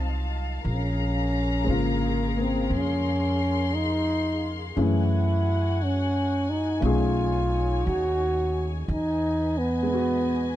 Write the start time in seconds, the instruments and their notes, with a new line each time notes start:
Already playing: upright bass C2, string section F#3 D#5 F5 A5, grand piano A3 C4 D#4 F4 F#4, trombone C4
0.65 upright bass A#1, trombone C#4, string section G#4 A#4 A#5
1.64 upright bass G#1, grand piano C#3 G#3 C5
1.70 trombone A#3, grand piano F4
2.37 grand piano A#3
2.41 trombone C4
2.70 upright bass F2
2.76 trombone C#4, string section C6
3.75 trombone D#4
4.76 upright bass F#2, grand piano E3 A3 C#4 G#4, trombone E4, string section F#5
4.80 string section F#4 G#5
5.84 trombone C#4
6.50 trombone D#4
6.80 upright bass B1, grand piano A3 C#4 D#4, string section D#4 C#5, trombone F4
6.85 grand piano G#4
7.87 upright bass D#2, trombone F#4
8.88 upright bass E2, trombone D#4, string section B4 D#5 G#5
9.58 trombone B3
9.83 grand piano G#3 B3
9.94 grand piano F#4